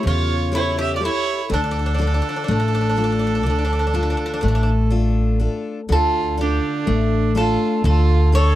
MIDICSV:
0, 0, Header, 1, 5, 480
1, 0, Start_track
1, 0, Key_signature, -1, "minor"
1, 0, Tempo, 975610
1, 743, Time_signature, 9, 3, 24, 8
1, 4208, End_track
2, 0, Start_track
2, 0, Title_t, "Violin"
2, 0, Program_c, 0, 40
2, 32, Note_on_c, 0, 73, 71
2, 251, Note_off_c, 0, 73, 0
2, 270, Note_on_c, 0, 73, 69
2, 379, Note_off_c, 0, 73, 0
2, 392, Note_on_c, 0, 76, 89
2, 467, Note_off_c, 0, 76, 0
2, 470, Note_on_c, 0, 74, 59
2, 501, Note_off_c, 0, 74, 0
2, 515, Note_on_c, 0, 73, 93
2, 733, Note_off_c, 0, 73, 0
2, 750, Note_on_c, 0, 69, 74
2, 2407, Note_off_c, 0, 69, 0
2, 2916, Note_on_c, 0, 65, 75
2, 3133, Note_off_c, 0, 65, 0
2, 3158, Note_on_c, 0, 62, 68
2, 3609, Note_off_c, 0, 62, 0
2, 3628, Note_on_c, 0, 65, 69
2, 3848, Note_off_c, 0, 65, 0
2, 3875, Note_on_c, 0, 65, 73
2, 4091, Note_off_c, 0, 65, 0
2, 4112, Note_on_c, 0, 69, 81
2, 4208, Note_off_c, 0, 69, 0
2, 4208, End_track
3, 0, Start_track
3, 0, Title_t, "Steel-string acoustic guitar"
3, 0, Program_c, 1, 25
3, 0, Note_on_c, 1, 67, 49
3, 0, Note_on_c, 1, 69, 40
3, 0, Note_on_c, 1, 73, 62
3, 15, Note_on_c, 1, 49, 62
3, 165, Note_off_c, 1, 67, 0
3, 166, Note_off_c, 1, 69, 0
3, 167, Note_off_c, 1, 73, 0
3, 254, Note_on_c, 1, 67, 51
3, 259, Note_on_c, 1, 69, 40
3, 260, Note_on_c, 1, 73, 58
3, 485, Note_off_c, 1, 49, 0
3, 489, Note_off_c, 1, 67, 0
3, 490, Note_off_c, 1, 69, 0
3, 490, Note_off_c, 1, 73, 0
3, 494, Note_on_c, 1, 67, 43
3, 497, Note_on_c, 1, 69, 42
3, 499, Note_on_c, 1, 73, 46
3, 690, Note_off_c, 1, 67, 0
3, 691, Note_off_c, 1, 69, 0
3, 691, Note_off_c, 1, 73, 0
3, 736, Note_on_c, 1, 50, 72
3, 976, Note_on_c, 1, 62, 53
3, 980, Note_on_c, 1, 65, 41
3, 982, Note_on_c, 1, 69, 57
3, 1205, Note_off_c, 1, 50, 0
3, 1222, Note_on_c, 1, 57, 67
3, 1364, Note_off_c, 1, 62, 0
3, 1364, Note_off_c, 1, 65, 0
3, 1366, Note_off_c, 1, 69, 0
3, 1459, Note_on_c, 1, 62, 43
3, 1461, Note_on_c, 1, 65, 41
3, 1464, Note_on_c, 1, 69, 50
3, 1688, Note_off_c, 1, 57, 0
3, 1704, Note_on_c, 1, 50, 67
3, 1845, Note_off_c, 1, 62, 0
3, 1846, Note_off_c, 1, 65, 0
3, 1848, Note_off_c, 1, 69, 0
3, 1936, Note_on_c, 1, 62, 48
3, 1941, Note_on_c, 1, 65, 46
3, 1941, Note_on_c, 1, 69, 53
3, 2169, Note_off_c, 1, 50, 0
3, 2178, Note_on_c, 1, 57, 69
3, 2324, Note_off_c, 1, 62, 0
3, 2325, Note_off_c, 1, 65, 0
3, 2325, Note_off_c, 1, 69, 0
3, 2413, Note_on_c, 1, 62, 50
3, 2417, Note_on_c, 1, 65, 45
3, 2419, Note_on_c, 1, 69, 53
3, 2645, Note_off_c, 1, 57, 0
3, 2649, Note_off_c, 1, 62, 0
3, 2653, Note_off_c, 1, 65, 0
3, 2653, Note_off_c, 1, 69, 0
3, 2655, Note_on_c, 1, 62, 48
3, 2659, Note_on_c, 1, 65, 38
3, 2662, Note_on_c, 1, 69, 44
3, 2850, Note_off_c, 1, 62, 0
3, 2852, Note_off_c, 1, 65, 0
3, 2852, Note_off_c, 1, 69, 0
3, 2896, Note_on_c, 1, 50, 66
3, 3137, Note_on_c, 1, 62, 49
3, 3139, Note_on_c, 1, 65, 47
3, 3143, Note_on_c, 1, 69, 45
3, 3364, Note_off_c, 1, 50, 0
3, 3380, Note_on_c, 1, 57, 71
3, 3522, Note_off_c, 1, 62, 0
3, 3524, Note_off_c, 1, 65, 0
3, 3525, Note_off_c, 1, 69, 0
3, 3616, Note_on_c, 1, 62, 52
3, 3619, Note_on_c, 1, 65, 44
3, 3621, Note_on_c, 1, 69, 56
3, 3846, Note_off_c, 1, 57, 0
3, 3858, Note_on_c, 1, 50, 68
3, 4001, Note_off_c, 1, 62, 0
3, 4003, Note_off_c, 1, 65, 0
3, 4004, Note_off_c, 1, 69, 0
3, 4095, Note_on_c, 1, 62, 49
3, 4099, Note_on_c, 1, 65, 39
3, 4100, Note_on_c, 1, 69, 62
3, 4208, Note_off_c, 1, 50, 0
3, 4208, Note_off_c, 1, 62, 0
3, 4208, Note_off_c, 1, 65, 0
3, 4208, Note_off_c, 1, 69, 0
3, 4208, End_track
4, 0, Start_track
4, 0, Title_t, "Bouzouki"
4, 0, Program_c, 2, 25
4, 35, Note_on_c, 2, 65, 96
4, 268, Note_off_c, 2, 65, 0
4, 270, Note_on_c, 2, 64, 97
4, 378, Note_off_c, 2, 64, 0
4, 387, Note_on_c, 2, 67, 84
4, 471, Note_off_c, 2, 67, 0
4, 473, Note_on_c, 2, 65, 61
4, 505, Note_off_c, 2, 65, 0
4, 517, Note_on_c, 2, 64, 99
4, 734, Note_off_c, 2, 64, 0
4, 756, Note_on_c, 2, 62, 80
4, 785, Note_off_c, 2, 62, 0
4, 806, Note_on_c, 2, 62, 62
4, 829, Note_off_c, 2, 62, 0
4, 842, Note_on_c, 2, 62, 70
4, 865, Note_off_c, 2, 62, 0
4, 882, Note_on_c, 2, 62, 51
4, 904, Note_off_c, 2, 62, 0
4, 916, Note_on_c, 2, 62, 55
4, 939, Note_off_c, 2, 62, 0
4, 957, Note_on_c, 2, 62, 51
4, 979, Note_off_c, 2, 62, 0
4, 991, Note_on_c, 2, 62, 54
4, 1014, Note_off_c, 2, 62, 0
4, 1019, Note_on_c, 2, 62, 50
4, 1047, Note_off_c, 2, 62, 0
4, 1054, Note_on_c, 2, 62, 61
4, 1083, Note_off_c, 2, 62, 0
4, 1091, Note_on_c, 2, 62, 57
4, 1120, Note_off_c, 2, 62, 0
4, 1127, Note_on_c, 2, 62, 54
4, 1156, Note_off_c, 2, 62, 0
4, 1163, Note_on_c, 2, 62, 49
4, 1193, Note_off_c, 2, 62, 0
4, 1201, Note_on_c, 2, 62, 52
4, 1230, Note_off_c, 2, 62, 0
4, 1236, Note_on_c, 2, 62, 55
4, 1266, Note_off_c, 2, 62, 0
4, 1277, Note_on_c, 2, 62, 61
4, 1306, Note_off_c, 2, 62, 0
4, 1319, Note_on_c, 2, 62, 48
4, 1345, Note_off_c, 2, 62, 0
4, 1351, Note_on_c, 2, 62, 61
4, 1376, Note_off_c, 2, 62, 0
4, 1382, Note_on_c, 2, 62, 46
4, 1414, Note_off_c, 2, 62, 0
4, 1424, Note_on_c, 2, 62, 56
4, 1453, Note_off_c, 2, 62, 0
4, 1465, Note_on_c, 2, 62, 48
4, 1488, Note_off_c, 2, 62, 0
4, 1494, Note_on_c, 2, 62, 58
4, 1526, Note_off_c, 2, 62, 0
4, 1536, Note_on_c, 2, 62, 46
4, 1565, Note_off_c, 2, 62, 0
4, 1571, Note_on_c, 2, 62, 52
4, 1601, Note_off_c, 2, 62, 0
4, 1608, Note_on_c, 2, 62, 50
4, 1638, Note_off_c, 2, 62, 0
4, 1648, Note_on_c, 2, 62, 55
4, 1677, Note_off_c, 2, 62, 0
4, 1688, Note_on_c, 2, 62, 48
4, 1716, Note_off_c, 2, 62, 0
4, 1721, Note_on_c, 2, 62, 49
4, 1750, Note_off_c, 2, 62, 0
4, 1764, Note_on_c, 2, 62, 47
4, 1788, Note_off_c, 2, 62, 0
4, 1794, Note_on_c, 2, 62, 61
4, 1824, Note_off_c, 2, 62, 0
4, 1834, Note_on_c, 2, 62, 46
4, 1860, Note_off_c, 2, 62, 0
4, 1866, Note_on_c, 2, 62, 59
4, 1897, Note_off_c, 2, 62, 0
4, 1903, Note_on_c, 2, 62, 50
4, 1934, Note_off_c, 2, 62, 0
4, 1941, Note_on_c, 2, 62, 60
4, 1972, Note_off_c, 2, 62, 0
4, 1981, Note_on_c, 2, 62, 55
4, 2011, Note_off_c, 2, 62, 0
4, 2017, Note_on_c, 2, 62, 57
4, 2046, Note_off_c, 2, 62, 0
4, 2052, Note_on_c, 2, 62, 57
4, 2083, Note_off_c, 2, 62, 0
4, 2095, Note_on_c, 2, 62, 68
4, 2123, Note_off_c, 2, 62, 0
4, 2133, Note_on_c, 2, 62, 56
4, 2161, Note_off_c, 2, 62, 0
4, 2170, Note_on_c, 2, 62, 65
4, 2198, Note_off_c, 2, 62, 0
4, 2205, Note_on_c, 2, 62, 57
4, 2233, Note_off_c, 2, 62, 0
4, 2238, Note_on_c, 2, 62, 63
4, 2269, Note_off_c, 2, 62, 0
4, 2278, Note_on_c, 2, 62, 54
4, 2308, Note_off_c, 2, 62, 0
4, 2914, Note_on_c, 2, 69, 86
4, 3131, Note_off_c, 2, 69, 0
4, 3153, Note_on_c, 2, 67, 76
4, 3607, Note_off_c, 2, 67, 0
4, 3627, Note_on_c, 2, 69, 82
4, 3847, Note_off_c, 2, 69, 0
4, 3863, Note_on_c, 2, 69, 81
4, 4085, Note_off_c, 2, 69, 0
4, 4108, Note_on_c, 2, 73, 93
4, 4208, Note_off_c, 2, 73, 0
4, 4208, End_track
5, 0, Start_track
5, 0, Title_t, "Upright bass"
5, 0, Program_c, 3, 32
5, 27, Note_on_c, 3, 40, 81
5, 530, Note_off_c, 3, 40, 0
5, 746, Note_on_c, 3, 38, 82
5, 1081, Note_off_c, 3, 38, 0
5, 1224, Note_on_c, 3, 33, 78
5, 1703, Note_off_c, 3, 33, 0
5, 1703, Note_on_c, 3, 38, 95
5, 2039, Note_off_c, 3, 38, 0
5, 2182, Note_on_c, 3, 33, 82
5, 2686, Note_off_c, 3, 33, 0
5, 2901, Note_on_c, 3, 38, 84
5, 3237, Note_off_c, 3, 38, 0
5, 3382, Note_on_c, 3, 33, 80
5, 3717, Note_off_c, 3, 33, 0
5, 3858, Note_on_c, 3, 38, 96
5, 4194, Note_off_c, 3, 38, 0
5, 4208, End_track
0, 0, End_of_file